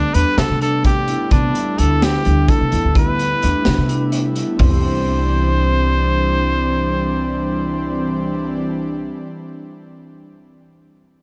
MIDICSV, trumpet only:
0, 0, Header, 1, 2, 480
1, 0, Start_track
1, 0, Key_signature, 0, "major"
1, 0, Tempo, 468750
1, 1350, Time_signature, 7, 3, 24, 8
1, 11492, End_track
2, 0, Start_track
2, 0, Title_t, "Trumpet"
2, 0, Program_c, 0, 56
2, 0, Note_on_c, 0, 62, 84
2, 143, Note_on_c, 0, 71, 91
2, 159, Note_off_c, 0, 62, 0
2, 388, Note_on_c, 0, 69, 86
2, 403, Note_off_c, 0, 71, 0
2, 629, Note_off_c, 0, 69, 0
2, 635, Note_on_c, 0, 69, 81
2, 856, Note_off_c, 0, 69, 0
2, 875, Note_on_c, 0, 67, 82
2, 1318, Note_off_c, 0, 67, 0
2, 1355, Note_on_c, 0, 62, 83
2, 1832, Note_on_c, 0, 69, 83
2, 1847, Note_off_c, 0, 62, 0
2, 2089, Note_on_c, 0, 67, 81
2, 2104, Note_off_c, 0, 69, 0
2, 2554, Note_on_c, 0, 69, 83
2, 2569, Note_off_c, 0, 67, 0
2, 3031, Note_off_c, 0, 69, 0
2, 3049, Note_on_c, 0, 71, 90
2, 4198, Note_off_c, 0, 71, 0
2, 4697, Note_on_c, 0, 72, 83
2, 8843, Note_off_c, 0, 72, 0
2, 11492, End_track
0, 0, End_of_file